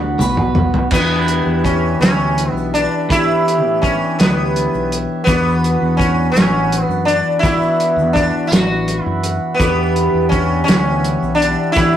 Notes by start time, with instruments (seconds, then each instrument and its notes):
Already playing: fingered electric bass D2, synth drone E2 E3, clean electric guitar D3 D4, harmonium B3 F#4 F#5 B5
0.18 fingered electric bass B1, clean electric guitar B2 B3, high tom, shaker
0.37 mid tom
0.55 mid tom
0.74 floor tom
0.91 fingered electric bass E2, clean electric guitar E3 B3 D4, sitar B3, harmonium G4 B4 E5 B5, kick, crash, shaker
0.95 clean electric guitar G4
1.28 closed hi-hat
1.46 fingered electric bass E2
1.64 sitar C#4, kick, closed hi-hat
2.00 fingered electric bass D2, sitar C#4, snare, closed hi-hat, shaker
2.38 closed hi-hat
2.52 fingered electric bass B1, sitar B3
2.57 shaker
2.74 sitar D4, closed hi-hat
3.09 clean electric guitar E3 B3 D4 G4, fingered electric bass E3, sitar E4, harmonium C#5, kick, closed hi-hat, shaker
3.48 closed hi-hat
3.65 fingered electric bass A2
3.82 sitar C#4, kick, closed hi-hat
4.19 fingered electric bass D2, sitar B3, snare, closed hi-hat, shaker
4.56 closed hi-hat
4.74 fingered electric bass B1, shaker
4.92 closed hi-hat
5.24 fingered electric bass E2, clean electric guitar E3 B3, sitar B3, kick, shaker
5.28 clean electric guitar D4 F#4, harmonium F#4 B4 F#5 B5, closed hi-hat
5.64 closed hi-hat
5.82 fingered electric bass E2
5.97 sitar C#4, kick, closed hi-hat
6.32 sitar C#4
6.36 fingered electric bass A1, snare, closed hi-hat, shaker
6.72 closed hi-hat
6.84 sitar B3
6.89 fingered electric bass F#2, shaker
7.05 sitar D4, closed hi-hat
7.39 clean electric guitar E3, sitar E4
7.43 fingered electric bass E3, clean electric guitar B3 D4 F#4, kick, closed hi-hat, shaker
7.62 shaker
7.80 closed hi-hat
7.96 fingered electric bass E2, shaker
8.13 sitar D4, kick, closed hi-hat
8.47 sitar F#4
8.52 fingered electric bass A1, snare, closed hi-hat, shaker
8.88 closed hi-hat
9.05 fingered electric bass F#2, sitar E4
9.24 closed hi-hat, shaker
9.54 sitar B3
9.59 fingered electric bass E2, clean electric guitar E3 B3 D4, harmonium G4 E5, kick, closed hi-hat, shaker
9.64 clean electric guitar G4
9.96 closed hi-hat
10.14 fingered electric bass E2
10.29 sitar C#4, kick, closed hi-hat
10.64 sitar C#4
10.68 fingered electric bass D2, snare, closed hi-hat, shaker
11.04 closed hi-hat
11.22 fingered electric bass B1, shaker
11.35 sitar D4
11.42 closed hi-hat
11.72 clean electric guitar E3, sitar E4, shaker
11.77 fingered electric bass E3, clean electric guitar B3 D4 G4, harmonium C#5, kick, closed hi-hat